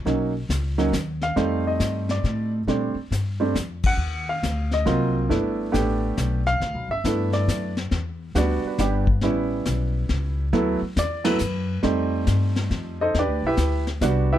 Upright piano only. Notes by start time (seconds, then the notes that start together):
0.06 F#3 A#3 C#4 D#4
0.78 F#3 A#3 C#4 D#4
1.23 F5
1.36 G3 A3 C4 D#4
1.67 D#5
2.11 D5
2.67 G3 A3 C4 D4
3.40 G3 A3 C4 D4
3.86 F#5
4.29 F5
4.74 D#5
4.85 F#3 A#3 C4 F4
5.29 A3 B3 D4 E4
5.72 A3 B3 D4 G4
6.47 F5
6.91 E5
7.05 A3 B3 D4 E4
7.33 D5
8.35 G3 B3 D4 F#4 D5
8.67 B4
8.79 G3 B3 D4 G4
9.23 G3 B3 C#4 E4
10.53 F#3 A3 B3 E4
10.99 D5
11.24 F#3 A3 B3 E4 B4
11.83 G3 A3 C4 D#4
13.01 D#4 A4 C5 D#5
13.19 D4 G4 B4 D5
13.46 E4 G4 B4 E5
14.02 G3 B3 D4 F#4
14.33 E4 G4 B4 E5